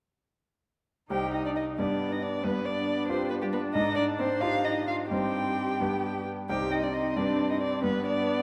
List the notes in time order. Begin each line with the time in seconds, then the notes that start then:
1.10 C2 D#4 G4 C5 G5
1.33 D#4 D#5
1.45 D4 D5
1.56 D#4 D#5
1.78 G2 B3 D4 G4 B4 D5
2.10 D#4 D#5
2.22 D4 D5
2.44 G2 B3 B4
2.65 D4 D5
3.08 C4 D4 F4 G4 B4 C5
3.30 B3 B4
3.42 G3 G4
3.53 B3 B4
3.74 G#2 D#4 D#5
3.96 D4 D5
4.19 C4 C5
4.41 D#4 F4 G4 C5 F5
4.65 D#4 D#5
4.87 F4 F5
5.10 G2 C4 D#4 G4 C5 G5
5.80 G2 B3 D4 G4 B4
6.49 C2 C4 D#4 G4 C5 G5
6.72 D#4 D#5
6.83 D4 D5
6.94 D#4 D#5
7.16 G2 D4 G4 B4 D5
7.50 D#4 D#5
7.61 D4 D5
7.83 G2 B3 B4
8.05 D4 D5